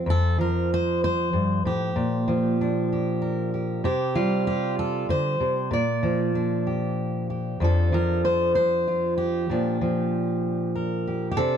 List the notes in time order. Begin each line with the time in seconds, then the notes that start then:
Already playing: F3
0.06 F2 A4
0.38 F3 A#4
0.74 C5
1.04 C5
1.33 G2
1.65 A2 G4
1.96 A#2
2.28 F3
2.61 D4
2.93 G4
3.22 A#4
3.54 G4
3.84 C3 G4
4.15 G3 F4
4.47 G4
4.79 A4
5.09 D3 C5
5.40 C3
5.71 A#2 D5
6.03 F3
6.35 D4
6.67 G4
7.30 G4
7.60 F2 F3 D4
7.64 A4
7.92 F3 A#4
8.25 C5
8.55 C5
8.88 F4
9.18 G4
9.49 A#2 F3 D4
9.81 F3
10.76 A#4
11.07 G4
11.31 G4
11.37 C3 D4 A4